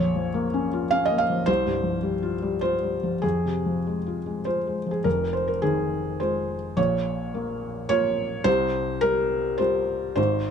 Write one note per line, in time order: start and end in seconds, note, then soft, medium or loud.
0.00 1.44 A#1 medium
0.00 0.28 F2 medium
0.00 0.92 C#5 loud
0.15 0.46 F3 medium
0.34 0.65 A#3 medium
0.54 0.84 C#4 medium
0.73 1.03 F4 medium
0.91 1.22 C#4 medium
0.91 1.06 F5 loud
1.05 1.20 D#5 loud
1.10 1.40 A#3 medium
1.18 1.47 F5 loud
1.30 1.48 F3 medium
1.46 3.18 C2 medium
1.46 2.60 C5 loud
1.66 1.96 G2 medium
1.83 2.15 F3 medium
2.03 2.34 G3 medium
2.23 2.54 F4 medium
2.42 2.74 G3 medium
2.61 2.94 F4 medium
2.61 3.22 C5 medium
2.83 3.15 G3 soft
3.03 3.23 F3 soft
3.22 5.01 F2 medium
3.22 4.45 G#4 medium
3.45 3.77 C3 soft
3.66 3.98 F3 soft
3.87 4.18 G#3 soft
4.06 4.38 F4 soft
4.26 4.58 G#3 soft
4.45 4.78 F4 soft
4.45 4.90 C5 medium
4.67 4.98 G#3 soft
4.86 5.05 F3 soft
4.91 5.05 G#4 medium
5.04 6.73 F1 medium
5.04 6.74 F2 medium
5.04 5.33 A#4 medium
5.33 5.48 C5 medium
5.48 5.62 A#4 medium
5.62 6.55 D#3 medium
5.62 6.19 G#4 medium
6.20 6.74 G#3 medium
6.20 6.74 F4 medium
6.20 6.77 C5 medium
6.77 8.42 A#1 medium
6.77 8.42 A#2 medium
6.77 7.88 C#5 loud
7.34 7.89 A#3 medium
7.89 8.42 A#3 medium
7.89 8.42 F4 medium
7.89 8.45 C#5 loud
8.44 10.12 C2 medium
8.44 10.13 C3 medium
8.44 9.01 C5 loud
9.01 9.58 G3 medium
9.01 9.58 A#4 loud
9.58 10.13 G3 medium
9.58 10.13 F4 medium
9.58 10.14 C5 loud
10.16 10.51 G#1 medium
10.16 10.51 G#2 medium
10.16 10.51 C5 medium